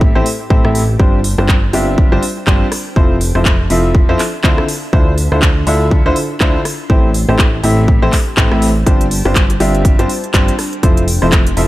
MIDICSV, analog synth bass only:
0, 0, Header, 1, 2, 480
1, 0, Start_track
1, 0, Tempo, 491803
1, 972, Time_signature, 4, 2, 24, 8
1, 11396, End_track
2, 0, Start_track
2, 0, Title_t, "Analog synth bass"
2, 0, Program_c, 0, 38
2, 0, Note_on_c, 0, 33, 100
2, 123, Note_off_c, 0, 33, 0
2, 151, Note_on_c, 0, 33, 93
2, 220, Note_off_c, 0, 33, 0
2, 492, Note_on_c, 0, 33, 95
2, 603, Note_off_c, 0, 33, 0
2, 631, Note_on_c, 0, 33, 99
2, 952, Note_off_c, 0, 33, 0
2, 972, Note_on_c, 0, 31, 97
2, 1323, Note_off_c, 0, 31, 0
2, 1351, Note_on_c, 0, 31, 99
2, 1672, Note_off_c, 0, 31, 0
2, 1691, Note_on_c, 0, 31, 96
2, 2043, Note_off_c, 0, 31, 0
2, 2070, Note_on_c, 0, 31, 90
2, 2139, Note_off_c, 0, 31, 0
2, 2412, Note_on_c, 0, 31, 95
2, 2571, Note_off_c, 0, 31, 0
2, 2891, Note_on_c, 0, 29, 97
2, 3243, Note_off_c, 0, 29, 0
2, 3270, Note_on_c, 0, 29, 98
2, 3591, Note_off_c, 0, 29, 0
2, 3611, Note_on_c, 0, 29, 93
2, 3963, Note_off_c, 0, 29, 0
2, 3990, Note_on_c, 0, 41, 91
2, 4059, Note_off_c, 0, 41, 0
2, 4331, Note_on_c, 0, 38, 96
2, 4491, Note_off_c, 0, 38, 0
2, 4812, Note_on_c, 0, 38, 94
2, 5163, Note_off_c, 0, 38, 0
2, 5192, Note_on_c, 0, 38, 96
2, 5512, Note_off_c, 0, 38, 0
2, 5532, Note_on_c, 0, 38, 98
2, 5883, Note_off_c, 0, 38, 0
2, 5910, Note_on_c, 0, 38, 91
2, 5979, Note_off_c, 0, 38, 0
2, 6252, Note_on_c, 0, 38, 99
2, 6412, Note_off_c, 0, 38, 0
2, 6732, Note_on_c, 0, 33, 97
2, 7083, Note_off_c, 0, 33, 0
2, 7111, Note_on_c, 0, 33, 96
2, 7432, Note_off_c, 0, 33, 0
2, 7451, Note_on_c, 0, 33, 99
2, 7803, Note_off_c, 0, 33, 0
2, 7831, Note_on_c, 0, 33, 93
2, 7899, Note_off_c, 0, 33, 0
2, 8172, Note_on_c, 0, 33, 98
2, 8283, Note_off_c, 0, 33, 0
2, 8310, Note_on_c, 0, 33, 96
2, 8631, Note_off_c, 0, 33, 0
2, 8652, Note_on_c, 0, 31, 99
2, 9003, Note_off_c, 0, 31, 0
2, 9031, Note_on_c, 0, 31, 96
2, 9352, Note_off_c, 0, 31, 0
2, 9373, Note_on_c, 0, 31, 99
2, 9724, Note_off_c, 0, 31, 0
2, 9751, Note_on_c, 0, 31, 93
2, 9820, Note_off_c, 0, 31, 0
2, 10092, Note_on_c, 0, 31, 100
2, 10252, Note_off_c, 0, 31, 0
2, 10572, Note_on_c, 0, 29, 96
2, 10923, Note_off_c, 0, 29, 0
2, 10950, Note_on_c, 0, 29, 96
2, 11271, Note_off_c, 0, 29, 0
2, 11291, Note_on_c, 0, 29, 99
2, 11396, Note_off_c, 0, 29, 0
2, 11396, End_track
0, 0, End_of_file